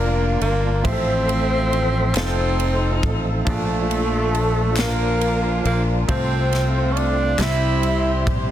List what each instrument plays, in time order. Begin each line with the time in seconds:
Already playing: fingered electric bass F1, horn section A#3 D4 F4 A#4, tenor saxophone A#3, grand piano A#3 D4 F4 A#4 D5, tonewheel organ A#3 D4 F4
0.40 fingered electric bass G1, horn section A#3 A#4, tenor saxophone A#3, ride
0.83 fingered electric bass A1, grand piano A2 F3 C4 G4 C5 E5, tonewheel organ F3 A3 C4 A4 E5, horn section C4 E4 F4 C5, tenor saxophone C4, kick, ride
0.92 grand piano A4
1.29 ride
1.73 ride
2.15 fingered electric bass F1, tonewheel organ F3 A3 C4 D#4 A4, horn section C4 D#4 A4 C5, grand piano C4 D#4 F4 A4 C5, tenor saxophone C4, snare, clap, ride
2.60 ride
3.03 fingered electric bass A1, kick, ride
3.45 fingered electric bass A#1, grand piano A#2 F3 D4 F4 A5, tonewheel organ F3 D4 G4, horn section A3 A4, tenor saxophone A3, kick, ride
3.49 horn section D4 F4, tonewheel organ F4, grand piano D5
3.91 ride
4.35 ride
4.77 horn section A#3 D4 F4 A#4, tenor saxophone A#3, snare, clap, ride
5.21 ride
5.65 fingered electric bass A#1, horn section A#3 A#4, tenor saxophone A#3, ride
6.08 fingered electric bass C2, grand piano C3 A3 C4 F4 A4 C5, tonewheel organ A3 C4 E4, horn section C4 F4 A4 C5, tenor saxophone C4, kick, ride
6.14 tonewheel organ F4
6.53 snare, ride
6.92 tenor saxophone C#4, horn section D4 D5
6.97 tenor saxophone D4, ride
7.38 fingered electric bass C2, grand piano C3 G3 C4 E4 G4 C5, tonewheel organ G3 C4 D#4, horn section E4 C5 E5, tenor saxophone E4, snare, clap, ride
7.43 tonewheel organ E4, horn section G4
7.83 ride
8.27 fingered electric bass A#1, kick, ride